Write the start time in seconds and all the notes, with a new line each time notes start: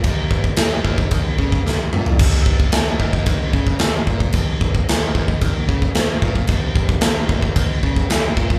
0.04 D#2, kick, crash
0.31 kick
0.44 kick
0.56 D#2, snare, crash
0.84 D#2, kick
0.98 kick
1.11 D#2, kick, crash
1.38 C#3, kick
1.52 kick
1.66 D#2, snare
1.93 A#2, mid tom
2.06 floor tom
2.19 D#2, kick, crash
2.46 kick
2.60 kick
2.72 D#2, snare, crash
3.00 D#2, kick
3.13 kick
3.26 D#2, kick, crash
3.53 C#3, kick
3.67 kick
3.79 D#2, snare, crash
4.07 A#2, kick
4.20 kick
4.33 D#2, kick, crash
4.61 kick
4.75 kick
4.89 D#2, snare, crash
5.15 D#2, kick
5.28 kick
5.41 D#2, kick, crash
5.68 C#3, kick
5.82 kick
5.95 D#2, snare, crash
6.21 A#2, kick
6.35 kick
6.47 D#2, kick, crash
6.76 kick
6.89 kick
7.01 D#2, snare, crash
7.29 D#2, kick
7.42 kick
7.56 D#2, kick, crash
7.83 C#3, kick
7.96 kick
8.09 D#2, snare, crash
8.37 A#2, kick
8.50 kick